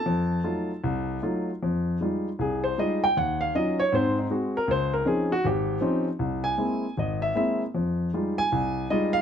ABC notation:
X:1
M:4/4
L:1/8
Q:"Swing" 1/4=156
K:Fphr
V:1 name="Grand piano"
[=A=a]6 z2 | [K:Fm] z4 A c e g | _g f e d c E z B | c B A _G =G3 z |
z ^g3 e =e e z | z3 a3 e f |]
V:2 name="Grand piano"
F,,2 [G,=A,EF] z C,,2 [G,A,EF] z | [K:Fm] F,,2 [G,A,EF] z C,,2 [G,A,EF] z | E,,2 [_G,DEF] z [A,,C]2 [A,C_G] z | D,,2 [F,CDE] z A,,,2 [F,CDE] z |
C,,2 [^G,B,C=E] z ^G,,,2 [G,B,CE] z | F,,2 [G,A,EF] z C,,2 [G,A,EF] z |]